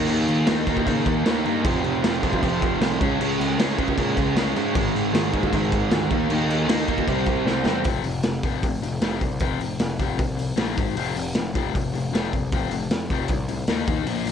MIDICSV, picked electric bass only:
0, 0, Header, 1, 2, 480
1, 0, Start_track
1, 0, Tempo, 388350
1, 117, Time_signature, 4, 2, 24, 8
1, 17698, End_track
2, 0, Start_track
2, 0, Title_t, "Picked electric bass"
2, 0, Program_c, 0, 34
2, 108, Note_on_c, 0, 39, 97
2, 320, Note_off_c, 0, 39, 0
2, 354, Note_on_c, 0, 39, 84
2, 563, Note_off_c, 0, 39, 0
2, 588, Note_on_c, 0, 39, 84
2, 800, Note_off_c, 0, 39, 0
2, 826, Note_on_c, 0, 39, 88
2, 1039, Note_off_c, 0, 39, 0
2, 1074, Note_on_c, 0, 49, 105
2, 1284, Note_off_c, 0, 49, 0
2, 1309, Note_on_c, 0, 39, 93
2, 1521, Note_off_c, 0, 39, 0
2, 1559, Note_on_c, 0, 39, 95
2, 1767, Note_off_c, 0, 39, 0
2, 1793, Note_on_c, 0, 43, 87
2, 2004, Note_off_c, 0, 43, 0
2, 2032, Note_on_c, 0, 29, 85
2, 2243, Note_off_c, 0, 29, 0
2, 2274, Note_on_c, 0, 29, 87
2, 2484, Note_off_c, 0, 29, 0
2, 2518, Note_on_c, 0, 29, 87
2, 2726, Note_off_c, 0, 29, 0
2, 2753, Note_on_c, 0, 36, 89
2, 2963, Note_off_c, 0, 36, 0
2, 3003, Note_on_c, 0, 29, 104
2, 3417, Note_off_c, 0, 29, 0
2, 3475, Note_on_c, 0, 36, 94
2, 3685, Note_off_c, 0, 36, 0
2, 3716, Note_on_c, 0, 37, 82
2, 3925, Note_off_c, 0, 37, 0
2, 3955, Note_on_c, 0, 37, 98
2, 4165, Note_off_c, 0, 37, 0
2, 4203, Note_on_c, 0, 37, 84
2, 4409, Note_off_c, 0, 37, 0
2, 4427, Note_on_c, 0, 37, 100
2, 4640, Note_off_c, 0, 37, 0
2, 4671, Note_on_c, 0, 37, 96
2, 4882, Note_off_c, 0, 37, 0
2, 4919, Note_on_c, 0, 46, 106
2, 5126, Note_off_c, 0, 46, 0
2, 5157, Note_on_c, 0, 37, 99
2, 5365, Note_off_c, 0, 37, 0
2, 5400, Note_on_c, 0, 37, 90
2, 5607, Note_off_c, 0, 37, 0
2, 5649, Note_on_c, 0, 44, 91
2, 5852, Note_off_c, 0, 44, 0
2, 5872, Note_on_c, 0, 32, 91
2, 6082, Note_off_c, 0, 32, 0
2, 6122, Note_on_c, 0, 32, 84
2, 6328, Note_off_c, 0, 32, 0
2, 6350, Note_on_c, 0, 32, 99
2, 6561, Note_off_c, 0, 32, 0
2, 6601, Note_on_c, 0, 39, 88
2, 6807, Note_off_c, 0, 39, 0
2, 6836, Note_on_c, 0, 32, 105
2, 7251, Note_off_c, 0, 32, 0
2, 7306, Note_on_c, 0, 38, 106
2, 7518, Note_off_c, 0, 38, 0
2, 7553, Note_on_c, 0, 39, 95
2, 7761, Note_off_c, 0, 39, 0
2, 7780, Note_on_c, 0, 39, 95
2, 7994, Note_off_c, 0, 39, 0
2, 8023, Note_on_c, 0, 39, 85
2, 8235, Note_off_c, 0, 39, 0
2, 8250, Note_on_c, 0, 39, 92
2, 8468, Note_off_c, 0, 39, 0
2, 8503, Note_on_c, 0, 39, 82
2, 8715, Note_off_c, 0, 39, 0
2, 8751, Note_on_c, 0, 36, 92
2, 8959, Note_off_c, 0, 36, 0
2, 8984, Note_on_c, 0, 36, 90
2, 9196, Note_off_c, 0, 36, 0
2, 9225, Note_on_c, 0, 36, 90
2, 9436, Note_off_c, 0, 36, 0
2, 9460, Note_on_c, 0, 40, 91
2, 9673, Note_off_c, 0, 40, 0
2, 9706, Note_on_c, 0, 29, 87
2, 9907, Note_off_c, 0, 29, 0
2, 9936, Note_on_c, 0, 29, 74
2, 10141, Note_off_c, 0, 29, 0
2, 10189, Note_on_c, 0, 29, 76
2, 10388, Note_off_c, 0, 29, 0
2, 10426, Note_on_c, 0, 29, 82
2, 10626, Note_off_c, 0, 29, 0
2, 10666, Note_on_c, 0, 29, 95
2, 10866, Note_off_c, 0, 29, 0
2, 10910, Note_on_c, 0, 29, 84
2, 11109, Note_off_c, 0, 29, 0
2, 11133, Note_on_c, 0, 29, 86
2, 11339, Note_off_c, 0, 29, 0
2, 11386, Note_on_c, 0, 36, 79
2, 11586, Note_off_c, 0, 36, 0
2, 11627, Note_on_c, 0, 29, 91
2, 11827, Note_off_c, 0, 29, 0
2, 11861, Note_on_c, 0, 29, 79
2, 12064, Note_off_c, 0, 29, 0
2, 12110, Note_on_c, 0, 29, 86
2, 12309, Note_off_c, 0, 29, 0
2, 12356, Note_on_c, 0, 29, 87
2, 12552, Note_off_c, 0, 29, 0
2, 12594, Note_on_c, 0, 36, 98
2, 12989, Note_off_c, 0, 36, 0
2, 13054, Note_on_c, 0, 34, 96
2, 13259, Note_off_c, 0, 34, 0
2, 13323, Note_on_c, 0, 32, 86
2, 13517, Note_off_c, 0, 32, 0
2, 13542, Note_on_c, 0, 29, 97
2, 13744, Note_off_c, 0, 29, 0
2, 13795, Note_on_c, 0, 29, 80
2, 13992, Note_off_c, 0, 29, 0
2, 14044, Note_on_c, 0, 29, 87
2, 14238, Note_off_c, 0, 29, 0
2, 14278, Note_on_c, 0, 29, 86
2, 14474, Note_off_c, 0, 29, 0
2, 14522, Note_on_c, 0, 29, 95
2, 14717, Note_off_c, 0, 29, 0
2, 14757, Note_on_c, 0, 29, 86
2, 14954, Note_off_c, 0, 29, 0
2, 14986, Note_on_c, 0, 29, 94
2, 15188, Note_off_c, 0, 29, 0
2, 15245, Note_on_c, 0, 36, 88
2, 15439, Note_off_c, 0, 36, 0
2, 15481, Note_on_c, 0, 29, 90
2, 15676, Note_off_c, 0, 29, 0
2, 15702, Note_on_c, 0, 29, 79
2, 15906, Note_off_c, 0, 29, 0
2, 15944, Note_on_c, 0, 29, 85
2, 16147, Note_off_c, 0, 29, 0
2, 16195, Note_on_c, 0, 29, 85
2, 16394, Note_off_c, 0, 29, 0
2, 16428, Note_on_c, 0, 36, 93
2, 16828, Note_off_c, 0, 36, 0
2, 16907, Note_on_c, 0, 39, 89
2, 17110, Note_off_c, 0, 39, 0
2, 17148, Note_on_c, 0, 39, 77
2, 17396, Note_off_c, 0, 39, 0
2, 17396, Note_on_c, 0, 34, 83
2, 17596, Note_off_c, 0, 34, 0
2, 17629, Note_on_c, 0, 34, 75
2, 17698, Note_off_c, 0, 34, 0
2, 17698, End_track
0, 0, End_of_file